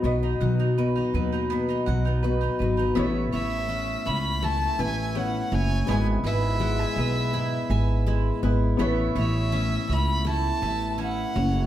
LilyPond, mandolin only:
\new Staff \with { instrumentName = "Mandolin" } { \time 4/4 \key a \lydian \tempo 4 = 82 b16 dis'16 fis''16 dis'16 b'16 dis'16 b'16 dis'16 b16 dis'16 fis''16 dis'16 b'16 dis'16 b'16 dis'16 | <b e''>8 cis''8 e''8 cis''8 e'8 e''8 e'8 cis''8 | <b gis''>8 b'8 fis''16 gis''16 b'8 e'8 gis''8 e'8 b'8 | <b e''>8 cis''8 e''8 cis''8 e'8 e''8 e'8 cis''8 | }